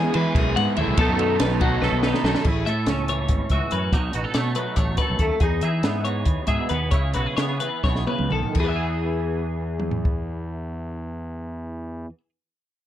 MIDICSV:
0, 0, Header, 1, 6, 480
1, 0, Start_track
1, 0, Key_signature, 4, "major"
1, 0, Tempo, 421053
1, 1124, Time_signature, 7, 3, 24, 8
1, 6409, Tempo, 437637
1, 8329, Tempo, 470958
1, 9289, Tempo, 496278
1, 13687, End_track
2, 0, Start_track
2, 0, Title_t, "Clean electric guitar"
2, 0, Program_c, 0, 27
2, 0, Note_on_c, 0, 68, 88
2, 164, Note_off_c, 0, 68, 0
2, 164, Note_on_c, 0, 71, 83
2, 400, Note_off_c, 0, 71, 0
2, 400, Note_on_c, 0, 68, 83
2, 641, Note_on_c, 0, 78, 82
2, 642, Note_off_c, 0, 68, 0
2, 879, Note_off_c, 0, 78, 0
2, 884, Note_on_c, 0, 76, 77
2, 1123, Note_off_c, 0, 76, 0
2, 1128, Note_on_c, 0, 69, 102
2, 1599, Note_off_c, 0, 69, 0
2, 1603, Note_on_c, 0, 71, 79
2, 1839, Note_on_c, 0, 66, 85
2, 1842, Note_off_c, 0, 71, 0
2, 2071, Note_on_c, 0, 71, 93
2, 2080, Note_off_c, 0, 66, 0
2, 2302, Note_off_c, 0, 71, 0
2, 2316, Note_on_c, 0, 71, 77
2, 2574, Note_off_c, 0, 71, 0
2, 2574, Note_on_c, 0, 69, 80
2, 2797, Note_off_c, 0, 69, 0
2, 2797, Note_on_c, 0, 68, 83
2, 3037, Note_on_c, 0, 76, 75
2, 3039, Note_off_c, 0, 68, 0
2, 3519, Note_off_c, 0, 76, 0
2, 3526, Note_on_c, 0, 73, 76
2, 4003, Note_off_c, 0, 73, 0
2, 4007, Note_on_c, 0, 76, 64
2, 4237, Note_off_c, 0, 76, 0
2, 4242, Note_on_c, 0, 71, 65
2, 4484, Note_off_c, 0, 71, 0
2, 4484, Note_on_c, 0, 73, 85
2, 4724, Note_off_c, 0, 73, 0
2, 4724, Note_on_c, 0, 71, 68
2, 4957, Note_off_c, 0, 71, 0
2, 4957, Note_on_c, 0, 73, 73
2, 5193, Note_off_c, 0, 73, 0
2, 5198, Note_on_c, 0, 71, 68
2, 5432, Note_off_c, 0, 71, 0
2, 5432, Note_on_c, 0, 73, 75
2, 5672, Note_off_c, 0, 73, 0
2, 5677, Note_on_c, 0, 71, 72
2, 5924, Note_off_c, 0, 71, 0
2, 5928, Note_on_c, 0, 69, 61
2, 6163, Note_off_c, 0, 69, 0
2, 6168, Note_on_c, 0, 68, 82
2, 6410, Note_off_c, 0, 68, 0
2, 6416, Note_on_c, 0, 76, 72
2, 6869, Note_off_c, 0, 76, 0
2, 6873, Note_on_c, 0, 73, 68
2, 7344, Note_off_c, 0, 73, 0
2, 7348, Note_on_c, 0, 76, 68
2, 7582, Note_off_c, 0, 76, 0
2, 7586, Note_on_c, 0, 71, 70
2, 7820, Note_off_c, 0, 71, 0
2, 7824, Note_on_c, 0, 73, 84
2, 8074, Note_off_c, 0, 73, 0
2, 8078, Note_on_c, 0, 71, 71
2, 8317, Note_off_c, 0, 71, 0
2, 8322, Note_on_c, 0, 73, 70
2, 8559, Note_off_c, 0, 73, 0
2, 8563, Note_on_c, 0, 71, 70
2, 8799, Note_off_c, 0, 71, 0
2, 8803, Note_on_c, 0, 73, 79
2, 9041, Note_off_c, 0, 73, 0
2, 9045, Note_on_c, 0, 71, 70
2, 9291, Note_off_c, 0, 71, 0
2, 9294, Note_on_c, 0, 69, 72
2, 9529, Note_off_c, 0, 69, 0
2, 9566, Note_on_c, 0, 68, 69
2, 9610, Note_on_c, 0, 71, 67
2, 9643, Note_off_c, 0, 71, 0
2, 9647, Note_on_c, 0, 76, 67
2, 12944, Note_off_c, 0, 68, 0
2, 13025, Note_off_c, 0, 76, 0
2, 13687, End_track
3, 0, Start_track
3, 0, Title_t, "Clean electric guitar"
3, 0, Program_c, 1, 27
3, 0, Note_on_c, 1, 40, 69
3, 0, Note_on_c, 1, 59, 53
3, 0, Note_on_c, 1, 63, 66
3, 0, Note_on_c, 1, 68, 73
3, 167, Note_on_c, 1, 52, 70
3, 201, Note_off_c, 1, 63, 0
3, 405, Note_off_c, 1, 40, 0
3, 424, Note_on_c, 1, 42, 70
3, 651, Note_off_c, 1, 42, 0
3, 655, Note_on_c, 1, 44, 60
3, 890, Note_off_c, 1, 44, 0
3, 902, Note_on_c, 1, 45, 74
3, 1093, Note_off_c, 1, 59, 0
3, 1103, Note_off_c, 1, 68, 0
3, 1123, Note_off_c, 1, 52, 0
3, 1127, Note_on_c, 1, 47, 80
3, 1133, Note_off_c, 1, 45, 0
3, 1137, Note_on_c, 1, 57, 68
3, 1143, Note_on_c, 1, 63, 64
3, 1148, Note_on_c, 1, 69, 70
3, 1360, Note_off_c, 1, 63, 0
3, 1374, Note_on_c, 1, 63, 64
3, 1846, Note_on_c, 1, 54, 61
3, 2077, Note_off_c, 1, 69, 0
3, 2091, Note_on_c, 1, 69, 66
3, 2326, Note_off_c, 1, 63, 0
3, 2348, Note_on_c, 1, 63, 57
3, 2562, Note_off_c, 1, 47, 0
3, 2575, Note_on_c, 1, 42, 65
3, 2773, Note_off_c, 1, 54, 0
3, 2776, Note_off_c, 1, 69, 0
3, 2779, Note_off_c, 1, 42, 0
3, 2785, Note_off_c, 1, 63, 0
3, 2808, Note_on_c, 1, 45, 67
3, 2821, Note_on_c, 1, 64, 57
3, 3062, Note_on_c, 1, 69, 54
3, 3293, Note_off_c, 1, 57, 0
3, 3297, Note_on_c, 1, 61, 70
3, 3535, Note_on_c, 1, 52, 56
3, 3997, Note_off_c, 1, 52, 0
3, 4011, Note_on_c, 1, 52, 57
3, 4012, Note_off_c, 1, 69, 0
3, 4024, Note_on_c, 1, 66, 50
3, 4224, Note_off_c, 1, 61, 0
3, 4238, Note_on_c, 1, 61, 58
3, 4452, Note_off_c, 1, 61, 0
3, 4458, Note_off_c, 1, 45, 0
3, 4459, Note_off_c, 1, 52, 0
3, 4464, Note_off_c, 1, 64, 0
3, 4477, Note_on_c, 1, 47, 64
3, 4484, Note_on_c, 1, 63, 54
3, 4719, Note_off_c, 1, 66, 0
3, 4732, Note_on_c, 1, 66, 54
3, 4834, Note_off_c, 1, 66, 0
3, 4834, Note_on_c, 1, 69, 45
3, 4980, Note_on_c, 1, 57, 63
3, 5216, Note_on_c, 1, 54, 61
3, 5683, Note_off_c, 1, 69, 0
3, 5687, Note_off_c, 1, 47, 0
3, 5710, Note_on_c, 1, 42, 56
3, 5718, Note_on_c, 1, 69, 56
3, 5931, Note_off_c, 1, 57, 0
3, 5945, Note_on_c, 1, 57, 59
3, 6140, Note_off_c, 1, 63, 0
3, 6147, Note_off_c, 1, 54, 0
3, 6152, Note_off_c, 1, 42, 0
3, 6157, Note_off_c, 1, 69, 0
3, 6178, Note_off_c, 1, 57, 0
3, 6180, Note_on_c, 1, 40, 66
3, 6192, Note_on_c, 1, 63, 59
3, 6430, Note_on_c, 1, 68, 53
3, 6651, Note_on_c, 1, 59, 65
3, 6882, Note_on_c, 1, 52, 53
3, 7342, Note_on_c, 1, 47, 56
3, 7348, Note_off_c, 1, 68, 0
3, 7352, Note_on_c, 1, 68, 57
3, 7594, Note_off_c, 1, 59, 0
3, 7598, Note_on_c, 1, 59, 55
3, 7817, Note_off_c, 1, 63, 0
3, 7830, Note_off_c, 1, 47, 0
3, 7837, Note_on_c, 1, 49, 69
3, 7841, Note_off_c, 1, 40, 0
3, 7846, Note_on_c, 1, 64, 53
3, 7871, Note_off_c, 1, 59, 0
3, 8087, Note_off_c, 1, 68, 0
3, 8092, Note_on_c, 1, 66, 56
3, 8206, Note_off_c, 1, 66, 0
3, 8206, Note_on_c, 1, 68, 47
3, 8346, Note_on_c, 1, 59, 60
3, 8566, Note_off_c, 1, 49, 0
3, 8566, Note_off_c, 1, 52, 0
3, 8582, Note_on_c, 1, 52, 54
3, 8819, Note_on_c, 1, 47, 65
3, 9038, Note_off_c, 1, 47, 0
3, 9042, Note_on_c, 1, 49, 62
3, 9288, Note_off_c, 1, 49, 0
3, 9292, Note_on_c, 1, 51, 63
3, 9502, Note_off_c, 1, 64, 0
3, 9507, Note_off_c, 1, 59, 0
3, 9522, Note_on_c, 1, 40, 55
3, 9528, Note_off_c, 1, 51, 0
3, 9528, Note_off_c, 1, 68, 0
3, 9555, Note_off_c, 1, 52, 0
3, 9566, Note_on_c, 1, 52, 58
3, 9623, Note_on_c, 1, 59, 55
3, 9717, Note_on_c, 1, 68, 50
3, 12939, Note_off_c, 1, 40, 0
3, 12983, Note_off_c, 1, 52, 0
3, 13040, Note_off_c, 1, 59, 0
3, 13133, Note_off_c, 1, 68, 0
3, 13687, End_track
4, 0, Start_track
4, 0, Title_t, "Overdriven electric guitar"
4, 0, Program_c, 2, 29
4, 0, Note_on_c, 2, 52, 82
4, 0, Note_on_c, 2, 56, 88
4, 0, Note_on_c, 2, 59, 85
4, 0, Note_on_c, 2, 64, 93
4, 0, Note_on_c, 2, 68, 80
4, 145, Note_off_c, 2, 68, 0
4, 159, Note_off_c, 2, 52, 0
4, 159, Note_on_c, 2, 68, 99
4, 164, Note_off_c, 2, 64, 0
4, 165, Note_off_c, 2, 56, 0
4, 177, Note_on_c, 2, 64, 85
4, 185, Note_off_c, 2, 59, 0
4, 189, Note_on_c, 2, 59, 87
4, 192, Note_on_c, 2, 56, 76
4, 203, Note_on_c, 2, 52, 69
4, 860, Note_off_c, 2, 52, 0
4, 866, Note_off_c, 2, 68, 0
4, 874, Note_on_c, 2, 52, 80
4, 875, Note_off_c, 2, 56, 0
4, 875, Note_off_c, 2, 64, 0
4, 879, Note_off_c, 2, 59, 0
4, 889, Note_on_c, 2, 56, 81
4, 893, Note_on_c, 2, 59, 94
4, 894, Note_on_c, 2, 64, 98
4, 908, Note_on_c, 2, 68, 98
4, 1099, Note_on_c, 2, 47, 86
4, 1104, Note_off_c, 2, 52, 0
4, 1109, Note_off_c, 2, 56, 0
4, 1109, Note_off_c, 2, 59, 0
4, 1114, Note_off_c, 2, 64, 0
4, 1114, Note_on_c, 2, 51, 82
4, 1114, Note_on_c, 2, 54, 78
4, 1121, Note_off_c, 2, 68, 0
4, 1122, Note_on_c, 2, 59, 94
4, 1140, Note_on_c, 2, 63, 91
4, 1148, Note_on_c, 2, 69, 96
4, 1805, Note_off_c, 2, 47, 0
4, 1816, Note_off_c, 2, 51, 0
4, 1819, Note_on_c, 2, 47, 92
4, 1822, Note_off_c, 2, 54, 0
4, 1826, Note_off_c, 2, 59, 0
4, 1830, Note_on_c, 2, 51, 80
4, 1835, Note_off_c, 2, 63, 0
4, 1839, Note_off_c, 2, 69, 0
4, 1841, Note_on_c, 2, 54, 89
4, 1848, Note_on_c, 2, 63, 85
4, 1850, Note_on_c, 2, 59, 80
4, 1859, Note_on_c, 2, 69, 88
4, 2534, Note_off_c, 2, 47, 0
4, 2540, Note_off_c, 2, 51, 0
4, 2540, Note_off_c, 2, 69, 0
4, 2545, Note_off_c, 2, 54, 0
4, 2549, Note_off_c, 2, 63, 0
4, 2550, Note_off_c, 2, 59, 0
4, 2554, Note_on_c, 2, 69, 94
4, 2562, Note_on_c, 2, 63, 98
4, 2576, Note_on_c, 2, 54, 86
4, 2576, Note_on_c, 2, 59, 86
4, 2593, Note_on_c, 2, 47, 79
4, 2594, Note_on_c, 2, 51, 88
4, 2782, Note_off_c, 2, 69, 0
4, 2787, Note_off_c, 2, 63, 0
4, 2793, Note_off_c, 2, 59, 0
4, 2794, Note_off_c, 2, 54, 0
4, 2802, Note_off_c, 2, 47, 0
4, 2802, Note_off_c, 2, 51, 0
4, 13687, End_track
5, 0, Start_track
5, 0, Title_t, "Fingered electric bass"
5, 0, Program_c, 3, 33
5, 173, Note_on_c, 3, 52, 93
5, 282, Note_off_c, 3, 52, 0
5, 398, Note_on_c, 3, 35, 92
5, 624, Note_off_c, 3, 35, 0
5, 654, Note_on_c, 3, 44, 96
5, 761, Note_off_c, 3, 44, 0
5, 885, Note_on_c, 3, 39, 96
5, 991, Note_off_c, 3, 39, 0
5, 998, Note_on_c, 3, 36, 89
5, 1105, Note_off_c, 3, 36, 0
5, 1112, Note_on_c, 3, 35, 114
5, 1229, Note_off_c, 3, 35, 0
5, 1241, Note_on_c, 3, 42, 104
5, 1575, Note_off_c, 3, 42, 0
5, 1597, Note_on_c, 3, 35, 85
5, 2044, Note_off_c, 3, 35, 0
5, 2076, Note_on_c, 3, 35, 83
5, 2187, Note_off_c, 3, 35, 0
5, 2194, Note_on_c, 3, 35, 96
5, 2420, Note_off_c, 3, 35, 0
5, 2555, Note_on_c, 3, 35, 102
5, 2669, Note_off_c, 3, 35, 0
5, 2795, Note_on_c, 3, 33, 94
5, 3020, Note_off_c, 3, 33, 0
5, 3040, Note_on_c, 3, 45, 91
5, 3263, Note_off_c, 3, 45, 0
5, 3273, Note_on_c, 3, 37, 74
5, 3723, Note_off_c, 3, 37, 0
5, 3751, Note_on_c, 3, 32, 85
5, 3867, Note_off_c, 3, 32, 0
5, 3991, Note_on_c, 3, 37, 85
5, 4108, Note_off_c, 3, 37, 0
5, 4245, Note_on_c, 3, 42, 80
5, 4472, Note_on_c, 3, 35, 93
5, 4490, Note_off_c, 3, 42, 0
5, 4701, Note_off_c, 3, 35, 0
5, 4720, Note_on_c, 3, 33, 79
5, 4834, Note_off_c, 3, 33, 0
5, 4955, Note_on_c, 3, 47, 80
5, 5183, Note_off_c, 3, 47, 0
5, 5434, Note_on_c, 3, 33, 74
5, 5664, Note_off_c, 3, 33, 0
5, 5813, Note_on_c, 3, 35, 79
5, 5910, Note_off_c, 3, 35, 0
5, 5917, Note_on_c, 3, 39, 83
5, 6035, Note_off_c, 3, 39, 0
5, 6164, Note_on_c, 3, 40, 99
5, 6391, Note_off_c, 3, 40, 0
5, 6402, Note_on_c, 3, 52, 86
5, 6623, Note_off_c, 3, 52, 0
5, 6639, Note_on_c, 3, 44, 75
5, 7079, Note_off_c, 3, 44, 0
5, 7111, Note_on_c, 3, 39, 90
5, 7223, Note_off_c, 3, 39, 0
5, 7341, Note_on_c, 3, 44, 85
5, 7458, Note_off_c, 3, 44, 0
5, 7599, Note_on_c, 3, 39, 90
5, 7833, Note_off_c, 3, 39, 0
5, 7833, Note_on_c, 3, 37, 100
5, 8062, Note_off_c, 3, 37, 0
5, 8091, Note_on_c, 3, 35, 81
5, 8202, Note_off_c, 3, 35, 0
5, 8331, Note_on_c, 3, 49, 76
5, 8548, Note_off_c, 3, 49, 0
5, 8806, Note_on_c, 3, 35, 78
5, 9029, Note_off_c, 3, 35, 0
5, 9171, Note_on_c, 3, 37, 72
5, 9284, Note_off_c, 3, 37, 0
5, 9298, Note_on_c, 3, 35, 89
5, 9405, Note_off_c, 3, 35, 0
5, 9520, Note_on_c, 3, 40, 88
5, 12898, Note_off_c, 3, 40, 0
5, 13687, End_track
6, 0, Start_track
6, 0, Title_t, "Drums"
6, 157, Note_on_c, 9, 51, 72
6, 271, Note_off_c, 9, 51, 0
6, 399, Note_on_c, 9, 36, 110
6, 406, Note_on_c, 9, 51, 100
6, 413, Note_on_c, 9, 38, 35
6, 513, Note_off_c, 9, 36, 0
6, 520, Note_off_c, 9, 51, 0
6, 527, Note_off_c, 9, 38, 0
6, 647, Note_on_c, 9, 51, 74
6, 654, Note_on_c, 9, 38, 37
6, 761, Note_off_c, 9, 51, 0
6, 768, Note_off_c, 9, 38, 0
6, 872, Note_on_c, 9, 51, 70
6, 986, Note_off_c, 9, 51, 0
6, 1111, Note_on_c, 9, 51, 106
6, 1115, Note_on_c, 9, 36, 113
6, 1225, Note_off_c, 9, 51, 0
6, 1229, Note_off_c, 9, 36, 0
6, 1356, Note_on_c, 9, 51, 82
6, 1470, Note_off_c, 9, 51, 0
6, 1591, Note_on_c, 9, 51, 110
6, 1598, Note_on_c, 9, 38, 119
6, 1705, Note_off_c, 9, 51, 0
6, 1712, Note_off_c, 9, 38, 0
6, 1832, Note_on_c, 9, 51, 71
6, 1836, Note_on_c, 9, 36, 78
6, 1946, Note_off_c, 9, 51, 0
6, 1950, Note_off_c, 9, 36, 0
6, 2081, Note_on_c, 9, 38, 60
6, 2195, Note_off_c, 9, 38, 0
6, 2311, Note_on_c, 9, 38, 91
6, 2425, Note_off_c, 9, 38, 0
6, 2443, Note_on_c, 9, 38, 81
6, 2557, Note_off_c, 9, 38, 0
6, 2564, Note_on_c, 9, 38, 96
6, 2675, Note_off_c, 9, 38, 0
6, 2675, Note_on_c, 9, 38, 88
6, 2787, Note_on_c, 9, 49, 79
6, 2789, Note_off_c, 9, 38, 0
6, 2795, Note_on_c, 9, 36, 98
6, 2901, Note_off_c, 9, 49, 0
6, 2909, Note_off_c, 9, 36, 0
6, 3043, Note_on_c, 9, 42, 53
6, 3157, Note_off_c, 9, 42, 0
6, 3265, Note_on_c, 9, 42, 75
6, 3272, Note_on_c, 9, 38, 105
6, 3379, Note_off_c, 9, 42, 0
6, 3386, Note_off_c, 9, 38, 0
6, 3513, Note_on_c, 9, 42, 54
6, 3627, Note_off_c, 9, 42, 0
6, 3745, Note_on_c, 9, 42, 74
6, 3753, Note_on_c, 9, 36, 94
6, 3859, Note_off_c, 9, 42, 0
6, 3867, Note_off_c, 9, 36, 0
6, 3985, Note_on_c, 9, 42, 59
6, 3993, Note_on_c, 9, 36, 66
6, 4099, Note_off_c, 9, 42, 0
6, 4107, Note_off_c, 9, 36, 0
6, 4227, Note_on_c, 9, 42, 60
6, 4341, Note_off_c, 9, 42, 0
6, 4475, Note_on_c, 9, 36, 105
6, 4477, Note_on_c, 9, 42, 74
6, 4589, Note_off_c, 9, 36, 0
6, 4591, Note_off_c, 9, 42, 0
6, 4711, Note_on_c, 9, 42, 57
6, 4825, Note_off_c, 9, 42, 0
6, 4947, Note_on_c, 9, 42, 83
6, 4953, Note_on_c, 9, 38, 102
6, 5061, Note_off_c, 9, 42, 0
6, 5067, Note_off_c, 9, 38, 0
6, 5187, Note_on_c, 9, 42, 64
6, 5301, Note_off_c, 9, 42, 0
6, 5429, Note_on_c, 9, 42, 75
6, 5437, Note_on_c, 9, 36, 92
6, 5543, Note_off_c, 9, 42, 0
6, 5551, Note_off_c, 9, 36, 0
6, 5666, Note_on_c, 9, 42, 67
6, 5673, Note_on_c, 9, 38, 34
6, 5677, Note_on_c, 9, 36, 71
6, 5780, Note_off_c, 9, 42, 0
6, 5787, Note_off_c, 9, 38, 0
6, 5791, Note_off_c, 9, 36, 0
6, 5916, Note_on_c, 9, 42, 60
6, 5920, Note_on_c, 9, 36, 67
6, 6030, Note_off_c, 9, 42, 0
6, 6034, Note_off_c, 9, 36, 0
6, 6157, Note_on_c, 9, 42, 76
6, 6164, Note_on_c, 9, 36, 97
6, 6271, Note_off_c, 9, 42, 0
6, 6278, Note_off_c, 9, 36, 0
6, 6399, Note_on_c, 9, 42, 57
6, 6510, Note_off_c, 9, 42, 0
6, 6639, Note_on_c, 9, 42, 77
6, 6646, Note_on_c, 9, 38, 98
6, 6749, Note_off_c, 9, 42, 0
6, 6756, Note_off_c, 9, 38, 0
6, 6877, Note_on_c, 9, 42, 54
6, 6986, Note_off_c, 9, 42, 0
6, 7103, Note_on_c, 9, 42, 73
6, 7111, Note_on_c, 9, 36, 89
6, 7213, Note_off_c, 9, 42, 0
6, 7220, Note_off_c, 9, 36, 0
6, 7337, Note_on_c, 9, 42, 59
6, 7347, Note_on_c, 9, 36, 66
6, 7447, Note_off_c, 9, 42, 0
6, 7457, Note_off_c, 9, 36, 0
6, 7581, Note_on_c, 9, 42, 53
6, 7691, Note_off_c, 9, 42, 0
6, 7826, Note_on_c, 9, 42, 77
6, 7832, Note_on_c, 9, 36, 105
6, 7935, Note_off_c, 9, 42, 0
6, 7941, Note_off_c, 9, 36, 0
6, 8069, Note_on_c, 9, 42, 53
6, 8179, Note_off_c, 9, 42, 0
6, 8330, Note_on_c, 9, 42, 85
6, 8336, Note_on_c, 9, 38, 98
6, 8432, Note_off_c, 9, 42, 0
6, 8438, Note_off_c, 9, 38, 0
6, 8562, Note_on_c, 9, 42, 55
6, 8664, Note_off_c, 9, 42, 0
6, 8803, Note_on_c, 9, 36, 92
6, 8804, Note_on_c, 9, 38, 49
6, 8905, Note_off_c, 9, 36, 0
6, 8906, Note_off_c, 9, 38, 0
6, 8922, Note_on_c, 9, 38, 55
6, 9024, Note_off_c, 9, 38, 0
6, 9042, Note_on_c, 9, 48, 70
6, 9144, Note_off_c, 9, 48, 0
6, 9157, Note_on_c, 9, 47, 59
6, 9259, Note_off_c, 9, 47, 0
6, 9279, Note_on_c, 9, 45, 78
6, 9376, Note_off_c, 9, 45, 0
6, 9399, Note_on_c, 9, 43, 61
6, 9495, Note_off_c, 9, 43, 0
6, 9514, Note_on_c, 9, 49, 75
6, 9523, Note_on_c, 9, 36, 87
6, 9610, Note_off_c, 9, 49, 0
6, 9620, Note_off_c, 9, 36, 0
6, 10722, Note_on_c, 9, 47, 59
6, 10819, Note_off_c, 9, 47, 0
6, 10836, Note_on_c, 9, 43, 65
6, 10933, Note_off_c, 9, 43, 0
6, 10968, Note_on_c, 9, 36, 81
6, 11065, Note_off_c, 9, 36, 0
6, 13687, End_track
0, 0, End_of_file